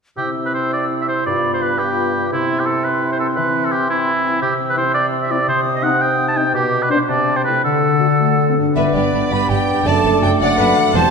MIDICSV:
0, 0, Header, 1, 11, 480
1, 0, Start_track
1, 0, Key_signature, 0, "major"
1, 0, Tempo, 364964
1, 217, Time_signature, 6, 3, 24, 8
1, 1656, Tempo, 351906
1, 5967, Key_signature, 1, "major"
1, 8856, Tempo, 368098
1, 14812, End_track
2, 0, Start_track
2, 0, Title_t, "Flute"
2, 0, Program_c, 0, 73
2, 228, Note_on_c, 0, 88, 36
2, 1663, Note_on_c, 0, 83, 35
2, 1684, Note_off_c, 0, 88, 0
2, 3093, Note_off_c, 0, 83, 0
2, 3101, Note_on_c, 0, 84, 38
2, 5556, Note_off_c, 0, 84, 0
2, 5971, Note_on_c, 0, 88, 47
2, 7400, Note_on_c, 0, 87, 49
2, 7421, Note_off_c, 0, 88, 0
2, 8124, Note_off_c, 0, 87, 0
2, 8130, Note_on_c, 0, 87, 50
2, 8841, Note_off_c, 0, 87, 0
2, 8858, Note_on_c, 0, 86, 46
2, 9575, Note_on_c, 0, 81, 44
2, 9595, Note_off_c, 0, 86, 0
2, 9932, Note_on_c, 0, 79, 40
2, 9952, Note_off_c, 0, 81, 0
2, 10299, Note_on_c, 0, 78, 43
2, 10319, Note_off_c, 0, 79, 0
2, 11400, Note_off_c, 0, 78, 0
2, 11757, Note_on_c, 0, 76, 53
2, 11987, Note_on_c, 0, 74, 45
2, 12007, Note_off_c, 0, 76, 0
2, 12490, Note_on_c, 0, 83, 57
2, 12510, Note_off_c, 0, 74, 0
2, 12709, Note_on_c, 0, 79, 54
2, 12729, Note_off_c, 0, 83, 0
2, 13200, Note_on_c, 0, 81, 62
2, 13220, Note_off_c, 0, 79, 0
2, 13669, Note_on_c, 0, 79, 64
2, 13689, Note_off_c, 0, 81, 0
2, 13901, Note_off_c, 0, 79, 0
2, 13909, Note_on_c, 0, 78, 68
2, 14603, Note_off_c, 0, 78, 0
2, 14620, Note_on_c, 0, 81, 81
2, 14812, Note_off_c, 0, 81, 0
2, 14812, End_track
3, 0, Start_track
3, 0, Title_t, "Violin section"
3, 0, Program_c, 1, 48
3, 11747, Note_on_c, 1, 76, 42
3, 11845, Note_off_c, 1, 76, 0
3, 11996, Note_on_c, 1, 74, 39
3, 12469, Note_off_c, 1, 74, 0
3, 12474, Note_on_c, 1, 83, 50
3, 12715, Note_off_c, 1, 83, 0
3, 12719, Note_on_c, 1, 79, 48
3, 13186, Note_off_c, 1, 79, 0
3, 13186, Note_on_c, 1, 81, 56
3, 13664, Note_on_c, 1, 79, 60
3, 13668, Note_off_c, 1, 81, 0
3, 13761, Note_off_c, 1, 79, 0
3, 13890, Note_on_c, 1, 78, 63
3, 14593, Note_off_c, 1, 78, 0
3, 14617, Note_on_c, 1, 81, 71
3, 14812, Note_off_c, 1, 81, 0
3, 14812, End_track
4, 0, Start_track
4, 0, Title_t, "Oboe"
4, 0, Program_c, 2, 68
4, 227, Note_on_c, 2, 67, 52
4, 389, Note_off_c, 2, 67, 0
4, 602, Note_on_c, 2, 71, 40
4, 652, Note_off_c, 2, 71, 0
4, 712, Note_on_c, 2, 72, 42
4, 945, Note_off_c, 2, 72, 0
4, 961, Note_on_c, 2, 74, 48
4, 1119, Note_off_c, 2, 74, 0
4, 1333, Note_on_c, 2, 76, 42
4, 1380, Note_off_c, 2, 76, 0
4, 1426, Note_on_c, 2, 72, 52
4, 1649, Note_off_c, 2, 72, 0
4, 1657, Note_on_c, 2, 74, 52
4, 2012, Note_off_c, 2, 74, 0
4, 2036, Note_on_c, 2, 72, 43
4, 2152, Note_on_c, 2, 71, 52
4, 2173, Note_off_c, 2, 72, 0
4, 2374, Note_on_c, 2, 67, 54
4, 2394, Note_off_c, 2, 71, 0
4, 3102, Note_off_c, 2, 67, 0
4, 3108, Note_on_c, 2, 64, 55
4, 3474, Note_on_c, 2, 67, 44
4, 3494, Note_off_c, 2, 64, 0
4, 3561, Note_on_c, 2, 69, 56
4, 3582, Note_off_c, 2, 67, 0
4, 3819, Note_on_c, 2, 71, 50
4, 3840, Note_off_c, 2, 69, 0
4, 4177, Note_off_c, 2, 71, 0
4, 4196, Note_on_c, 2, 72, 46
4, 4245, Note_off_c, 2, 72, 0
4, 4297, Note_on_c, 2, 69, 52
4, 4404, Note_off_c, 2, 69, 0
4, 4518, Note_on_c, 2, 71, 50
4, 4917, Note_on_c, 2, 69, 47
4, 4937, Note_off_c, 2, 71, 0
4, 5008, Note_on_c, 2, 67, 60
4, 5028, Note_off_c, 2, 69, 0
4, 5249, Note_off_c, 2, 67, 0
4, 5260, Note_on_c, 2, 64, 62
4, 5958, Note_off_c, 2, 64, 0
4, 5969, Note_on_c, 2, 67, 60
4, 6131, Note_off_c, 2, 67, 0
4, 6344, Note_on_c, 2, 71, 57
4, 6394, Note_off_c, 2, 71, 0
4, 6454, Note_on_c, 2, 72, 58
4, 6672, Note_off_c, 2, 72, 0
4, 6680, Note_on_c, 2, 74, 70
4, 6844, Note_off_c, 2, 74, 0
4, 7067, Note_on_c, 2, 76, 56
4, 7189, Note_on_c, 2, 74, 72
4, 7209, Note_off_c, 2, 76, 0
4, 7418, Note_off_c, 2, 74, 0
4, 7424, Note_on_c, 2, 72, 69
4, 7581, Note_off_c, 2, 72, 0
4, 7788, Note_on_c, 2, 75, 60
4, 7896, Note_on_c, 2, 78, 74
4, 7916, Note_off_c, 2, 75, 0
4, 8139, Note_on_c, 2, 79, 65
4, 8159, Note_off_c, 2, 78, 0
4, 8496, Note_off_c, 2, 79, 0
4, 8506, Note_on_c, 2, 81, 56
4, 8623, Note_on_c, 2, 79, 72
4, 8644, Note_off_c, 2, 81, 0
4, 8860, Note_off_c, 2, 79, 0
4, 8869, Note_on_c, 2, 67, 68
4, 9230, Note_on_c, 2, 71, 57
4, 9249, Note_off_c, 2, 67, 0
4, 9332, Note_off_c, 2, 71, 0
4, 9339, Note_on_c, 2, 72, 67
4, 9444, Note_off_c, 2, 72, 0
4, 9577, Note_on_c, 2, 74, 59
4, 9935, Note_on_c, 2, 72, 52
4, 9955, Note_off_c, 2, 74, 0
4, 10028, Note_off_c, 2, 72, 0
4, 10036, Note_on_c, 2, 71, 60
4, 10278, Note_off_c, 2, 71, 0
4, 10299, Note_on_c, 2, 69, 57
4, 11484, Note_off_c, 2, 69, 0
4, 11757, Note_on_c, 2, 74, 38
4, 14570, Note_off_c, 2, 74, 0
4, 14630, Note_on_c, 2, 72, 51
4, 14812, Note_off_c, 2, 72, 0
4, 14812, End_track
5, 0, Start_track
5, 0, Title_t, "Viola section"
5, 0, Program_c, 3, 48
5, 11744, Note_on_c, 3, 71, 37
5, 12424, Note_off_c, 3, 71, 0
5, 12469, Note_on_c, 3, 67, 42
5, 13177, Note_off_c, 3, 67, 0
5, 13185, Note_on_c, 3, 69, 52
5, 13900, Note_on_c, 3, 74, 61
5, 13905, Note_off_c, 3, 69, 0
5, 14130, Note_on_c, 3, 71, 55
5, 14142, Note_off_c, 3, 74, 0
5, 14367, Note_on_c, 3, 69, 46
5, 14369, Note_off_c, 3, 71, 0
5, 14603, Note_on_c, 3, 72, 58
5, 14610, Note_off_c, 3, 69, 0
5, 14812, Note_off_c, 3, 72, 0
5, 14812, End_track
6, 0, Start_track
6, 0, Title_t, "Violin section"
6, 0, Program_c, 4, 48
6, 11755, Note_on_c, 4, 71, 44
6, 11978, Note_off_c, 4, 71, 0
6, 11997, Note_on_c, 4, 67, 32
6, 12093, Note_off_c, 4, 67, 0
6, 12246, Note_on_c, 4, 62, 29
6, 12340, Note_off_c, 4, 62, 0
6, 12495, Note_on_c, 4, 71, 49
6, 12710, Note_off_c, 4, 71, 0
6, 12715, Note_on_c, 4, 67, 35
6, 12811, Note_off_c, 4, 67, 0
6, 13189, Note_on_c, 4, 74, 45
6, 13414, Note_off_c, 4, 74, 0
6, 13425, Note_on_c, 4, 69, 41
6, 13522, Note_off_c, 4, 69, 0
6, 13658, Note_on_c, 4, 66, 40
6, 13756, Note_off_c, 4, 66, 0
6, 13903, Note_on_c, 4, 74, 52
6, 14126, Note_off_c, 4, 74, 0
6, 14137, Note_on_c, 4, 69, 48
6, 14233, Note_off_c, 4, 69, 0
6, 14617, Note_on_c, 4, 72, 55
6, 14812, Note_off_c, 4, 72, 0
6, 14812, End_track
7, 0, Start_track
7, 0, Title_t, "Harp"
7, 0, Program_c, 5, 46
7, 216, Note_on_c, 5, 48, 35
7, 459, Note_on_c, 5, 60, 29
7, 711, Note_on_c, 5, 64, 33
7, 945, Note_on_c, 5, 72, 33
7, 1178, Note_off_c, 5, 64, 0
7, 1194, Note_on_c, 5, 64, 31
7, 1404, Note_off_c, 5, 60, 0
7, 1420, Note_on_c, 5, 60, 28
7, 1652, Note_on_c, 5, 43, 34
7, 1674, Note_off_c, 5, 48, 0
7, 1674, Note_off_c, 5, 60, 0
7, 1675, Note_off_c, 5, 72, 0
7, 1680, Note_off_c, 5, 64, 0
7, 1900, Note_on_c, 5, 59, 30
7, 2133, Note_on_c, 5, 65, 33
7, 2383, Note_on_c, 5, 71, 35
7, 2604, Note_off_c, 5, 65, 0
7, 2620, Note_on_c, 5, 65, 33
7, 2844, Note_off_c, 5, 59, 0
7, 2860, Note_on_c, 5, 59, 31
7, 3113, Note_on_c, 5, 48, 33
7, 3122, Note_off_c, 5, 43, 0
7, 3123, Note_off_c, 5, 59, 0
7, 3124, Note_off_c, 5, 65, 0
7, 3126, Note_off_c, 5, 71, 0
7, 3348, Note_on_c, 5, 60, 33
7, 3816, Note_on_c, 5, 72, 37
7, 4053, Note_on_c, 5, 64, 33
7, 4289, Note_off_c, 5, 60, 0
7, 4305, Note_on_c, 5, 60, 31
7, 4533, Note_on_c, 5, 52, 41
7, 4556, Note_off_c, 5, 48, 0
7, 4752, Note_off_c, 5, 64, 0
7, 4769, Note_on_c, 5, 64, 34
7, 5012, Note_on_c, 5, 67, 39
7, 5251, Note_on_c, 5, 76, 41
7, 5469, Note_off_c, 5, 67, 0
7, 5486, Note_on_c, 5, 67, 38
7, 5704, Note_off_c, 5, 64, 0
7, 5720, Note_on_c, 5, 64, 37
7, 5958, Note_on_c, 5, 48, 47
7, 5986, Note_off_c, 5, 52, 0
7, 6187, Note_off_c, 5, 60, 0
7, 6203, Note_on_c, 5, 60, 38
7, 6424, Note_off_c, 5, 64, 0
7, 6440, Note_on_c, 5, 64, 43
7, 6672, Note_off_c, 5, 72, 0
7, 6688, Note_on_c, 5, 72, 43
7, 6915, Note_off_c, 5, 64, 0
7, 6932, Note_on_c, 5, 64, 44
7, 7156, Note_off_c, 5, 60, 0
7, 7172, Note_on_c, 5, 60, 39
7, 7387, Note_off_c, 5, 48, 0
7, 7403, Note_on_c, 5, 48, 44
7, 7427, Note_off_c, 5, 76, 0
7, 7428, Note_off_c, 5, 64, 0
7, 7628, Note_off_c, 5, 60, 0
7, 7645, Note_on_c, 5, 60, 37
7, 7876, Note_on_c, 5, 63, 46
7, 8105, Note_off_c, 5, 72, 0
7, 8122, Note_on_c, 5, 72, 45
7, 8344, Note_off_c, 5, 63, 0
7, 8360, Note_on_c, 5, 63, 43
7, 8592, Note_off_c, 5, 60, 0
7, 8609, Note_on_c, 5, 60, 38
7, 8842, Note_on_c, 5, 47, 43
7, 8868, Note_off_c, 5, 63, 0
7, 8870, Note_off_c, 5, 72, 0
7, 8871, Note_off_c, 5, 48, 0
7, 8872, Note_off_c, 5, 60, 0
7, 9088, Note_on_c, 5, 62, 35
7, 9308, Note_off_c, 5, 62, 0
7, 9319, Note_off_c, 5, 67, 0
7, 9323, Note_on_c, 5, 62, 35
7, 9335, Note_on_c, 5, 67, 43
7, 9568, Note_on_c, 5, 48, 47
7, 9578, Note_off_c, 5, 47, 0
7, 9583, Note_off_c, 5, 62, 0
7, 9588, Note_off_c, 5, 67, 0
7, 10048, Note_on_c, 5, 64, 32
7, 10054, Note_on_c, 5, 69, 31
7, 10293, Note_on_c, 5, 50, 40
7, 10308, Note_off_c, 5, 48, 0
7, 10309, Note_off_c, 5, 64, 0
7, 10533, Note_on_c, 5, 57, 32
7, 10785, Note_on_c, 5, 66, 33
7, 11014, Note_off_c, 5, 69, 0
7, 11030, Note_on_c, 5, 69, 36
7, 11245, Note_off_c, 5, 66, 0
7, 11261, Note_on_c, 5, 66, 31
7, 11499, Note_off_c, 5, 57, 0
7, 11515, Note_on_c, 5, 57, 27
7, 11526, Note_on_c, 5, 43, 31
7, 11578, Note_on_c, 5, 59, 25
7, 11641, Note_on_c, 5, 62, 26
7, 11699, Note_on_c, 5, 67, 25
7, 11768, Note_off_c, 5, 66, 0
7, 11769, Note_off_c, 5, 50, 0
7, 11773, Note_off_c, 5, 57, 0
7, 11774, Note_off_c, 5, 69, 0
7, 12959, Note_on_c, 5, 42, 41
7, 13017, Note_on_c, 5, 57, 32
7, 13059, Note_off_c, 5, 62, 0
7, 13075, Note_on_c, 5, 62, 31
7, 13103, Note_off_c, 5, 43, 0
7, 13129, Note_off_c, 5, 59, 0
7, 13132, Note_on_c, 5, 69, 30
7, 13189, Note_off_c, 5, 67, 0
7, 14377, Note_on_c, 5, 52, 39
7, 14440, Note_on_c, 5, 55, 34
7, 14496, Note_on_c, 5, 60, 34
7, 14519, Note_off_c, 5, 42, 0
7, 14547, Note_off_c, 5, 57, 0
7, 14552, Note_on_c, 5, 72, 38
7, 14576, Note_off_c, 5, 62, 0
7, 14605, Note_off_c, 5, 69, 0
7, 14812, Note_off_c, 5, 52, 0
7, 14812, Note_off_c, 5, 55, 0
7, 14812, Note_off_c, 5, 60, 0
7, 14812, Note_off_c, 5, 72, 0
7, 14812, End_track
8, 0, Start_track
8, 0, Title_t, "French horn section"
8, 0, Program_c, 6, 60
8, 239, Note_on_c, 6, 64, 39
8, 243, Note_on_c, 6, 60, 34
8, 1614, Note_off_c, 6, 64, 0
8, 1616, Note_off_c, 6, 60, 0
8, 1676, Note_on_c, 6, 59, 34
8, 1678, Note_on_c, 6, 65, 33
8, 2365, Note_off_c, 6, 65, 0
8, 2370, Note_off_c, 6, 59, 0
8, 2382, Note_on_c, 6, 65, 33
8, 2386, Note_on_c, 6, 59, 35
8, 3091, Note_off_c, 6, 65, 0
8, 3093, Note_off_c, 6, 59, 0
8, 3116, Note_on_c, 6, 60, 34
8, 3119, Note_on_c, 6, 64, 38
8, 4510, Note_off_c, 6, 60, 0
8, 4512, Note_off_c, 6, 64, 0
8, 4549, Note_on_c, 6, 60, 38
8, 4550, Note_on_c, 6, 64, 41
8, 5228, Note_off_c, 6, 60, 0
8, 5233, Note_off_c, 6, 64, 0
8, 5244, Note_on_c, 6, 60, 45
8, 5250, Note_on_c, 6, 64, 37
8, 5950, Note_off_c, 6, 60, 0
8, 5953, Note_off_c, 6, 64, 0
8, 6420, Note_on_c, 6, 60, 49
8, 6427, Note_on_c, 6, 64, 43
8, 6513, Note_off_c, 6, 60, 0
8, 6518, Note_off_c, 6, 64, 0
8, 7167, Note_on_c, 6, 64, 47
8, 7168, Note_on_c, 6, 60, 43
8, 7251, Note_off_c, 6, 60, 0
8, 7251, Note_off_c, 6, 64, 0
8, 7882, Note_on_c, 6, 63, 49
8, 7894, Note_on_c, 6, 60, 50
8, 7968, Note_off_c, 6, 63, 0
8, 7976, Note_off_c, 6, 60, 0
8, 8603, Note_on_c, 6, 60, 45
8, 8615, Note_on_c, 6, 63, 47
8, 8690, Note_off_c, 6, 60, 0
8, 8698, Note_off_c, 6, 63, 0
8, 9327, Note_on_c, 6, 59, 44
8, 9327, Note_on_c, 6, 62, 50
8, 9410, Note_off_c, 6, 59, 0
8, 9410, Note_off_c, 6, 62, 0
8, 10054, Note_on_c, 6, 57, 41
8, 10058, Note_on_c, 6, 64, 38
8, 10135, Note_off_c, 6, 57, 0
8, 10138, Note_off_c, 6, 64, 0
8, 10756, Note_on_c, 6, 66, 37
8, 10759, Note_on_c, 6, 57, 38
8, 10846, Note_off_c, 6, 66, 0
8, 10848, Note_off_c, 6, 57, 0
8, 11013, Note_on_c, 6, 57, 44
8, 11178, Note_off_c, 6, 57, 0
8, 11406, Note_on_c, 6, 60, 43
8, 11455, Note_off_c, 6, 60, 0
8, 11512, Note_on_c, 6, 62, 35
8, 11743, Note_off_c, 6, 62, 0
8, 11756, Note_on_c, 6, 59, 35
8, 11758, Note_on_c, 6, 62, 36
8, 13147, Note_off_c, 6, 59, 0
8, 13208, Note_on_c, 6, 57, 45
8, 14571, Note_off_c, 6, 62, 0
8, 14624, Note_off_c, 6, 57, 0
8, 14625, Note_on_c, 6, 55, 46
8, 14627, Note_on_c, 6, 60, 43
8, 14812, Note_off_c, 6, 55, 0
8, 14812, Note_off_c, 6, 60, 0
8, 14812, End_track
9, 0, Start_track
9, 0, Title_t, "Bassoon"
9, 0, Program_c, 7, 70
9, 215, Note_on_c, 7, 48, 39
9, 1602, Note_off_c, 7, 48, 0
9, 1653, Note_on_c, 7, 43, 42
9, 3103, Note_on_c, 7, 48, 42
9, 3124, Note_off_c, 7, 43, 0
9, 4532, Note_on_c, 7, 52, 42
9, 4552, Note_off_c, 7, 48, 0
9, 5954, Note_off_c, 7, 52, 0
9, 5962, Note_on_c, 7, 48, 52
9, 8857, Note_on_c, 7, 47, 52
9, 8876, Note_off_c, 7, 48, 0
9, 9359, Note_off_c, 7, 47, 0
9, 9571, Note_on_c, 7, 48, 48
9, 10276, Note_off_c, 7, 48, 0
9, 10297, Note_on_c, 7, 50, 45
9, 11483, Note_off_c, 7, 50, 0
9, 11752, Note_on_c, 7, 59, 35
9, 13193, Note_on_c, 7, 57, 46
9, 13212, Note_off_c, 7, 59, 0
9, 14612, Note_off_c, 7, 57, 0
9, 14620, Note_on_c, 7, 55, 43
9, 14812, Note_off_c, 7, 55, 0
9, 14812, End_track
10, 0, Start_track
10, 0, Title_t, "Cello section"
10, 0, Program_c, 8, 48
10, 11752, Note_on_c, 8, 43, 39
10, 11849, Note_off_c, 8, 43, 0
10, 11994, Note_on_c, 8, 43, 31
10, 12091, Note_off_c, 8, 43, 0
10, 12238, Note_on_c, 8, 43, 29
10, 12334, Note_off_c, 8, 43, 0
10, 12477, Note_on_c, 8, 43, 51
10, 12573, Note_off_c, 8, 43, 0
10, 12726, Note_on_c, 8, 43, 34
10, 12820, Note_off_c, 8, 43, 0
10, 13196, Note_on_c, 8, 42, 52
10, 13291, Note_off_c, 8, 42, 0
10, 13432, Note_on_c, 8, 42, 42
10, 13528, Note_off_c, 8, 42, 0
10, 13671, Note_on_c, 8, 42, 40
10, 13766, Note_off_c, 8, 42, 0
10, 13899, Note_on_c, 8, 42, 66
10, 13996, Note_off_c, 8, 42, 0
10, 14139, Note_on_c, 8, 42, 41
10, 14235, Note_off_c, 8, 42, 0
10, 14605, Note_on_c, 8, 40, 59
10, 14701, Note_off_c, 8, 40, 0
10, 14812, End_track
11, 0, Start_track
11, 0, Title_t, "Double bass section"
11, 0, Program_c, 10, 48
11, 11757, Note_on_c, 10, 31, 45
11, 11852, Note_off_c, 10, 31, 0
11, 11990, Note_on_c, 10, 31, 34
11, 12088, Note_off_c, 10, 31, 0
11, 12234, Note_on_c, 10, 31, 37
11, 12330, Note_off_c, 10, 31, 0
11, 12475, Note_on_c, 10, 31, 45
11, 12571, Note_off_c, 10, 31, 0
11, 12711, Note_on_c, 10, 31, 35
11, 12808, Note_off_c, 10, 31, 0
11, 13190, Note_on_c, 10, 30, 59
11, 13286, Note_off_c, 10, 30, 0
11, 13435, Note_on_c, 10, 30, 43
11, 13530, Note_off_c, 10, 30, 0
11, 13672, Note_on_c, 10, 30, 42
11, 13767, Note_off_c, 10, 30, 0
11, 13910, Note_on_c, 10, 30, 54
11, 14005, Note_off_c, 10, 30, 0
11, 14145, Note_on_c, 10, 30, 43
11, 14240, Note_off_c, 10, 30, 0
11, 14612, Note_on_c, 10, 28, 58
11, 14707, Note_off_c, 10, 28, 0
11, 14812, End_track
0, 0, End_of_file